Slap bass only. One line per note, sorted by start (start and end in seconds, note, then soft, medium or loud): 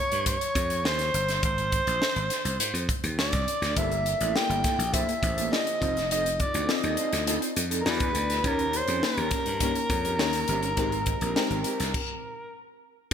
0.12 0.36 G2 medium
0.55 0.85 F2 medium
0.85 1.09 D#2 medium
1.14 1.38 G1 medium
1.43 1.80 G#1 medium
1.87 1.99 A#1 medium
2.16 2.28 G#1 medium
2.45 2.57 C2 medium
2.60 2.72 G#2 medium
2.74 2.86 F2 medium
3.03 3.18 D#2 medium
3.18 3.30 D2 medium
3.33 3.45 C2 medium
3.62 3.74 D2 medium
3.77 4.13 G1 medium
4.21 4.33 A1 medium
4.49 4.62 G1 medium
4.78 5.03 A#1 medium
5.23 5.47 A1 medium
5.82 6.43 F1 medium
6.55 6.67 D2 medium
6.84 6.96 D#2 medium
7.13 7.37 D2 medium
7.56 7.81 F2 medium
7.86 8.10 E2 medium
8.15 8.40 D2 medium
8.44 8.81 D#2 medium
8.88 9.00 F2 medium
9.17 9.30 D#2 medium
9.46 9.71 G2 medium
9.90 10.19 F2 medium
10.19 10.44 D#2 medium
10.48 10.73 G1 medium
10.77 11.14 G#1 medium
11.21 11.34 A#1 medium
11.50 11.63 G#1 medium
11.80 11.92 C2 medium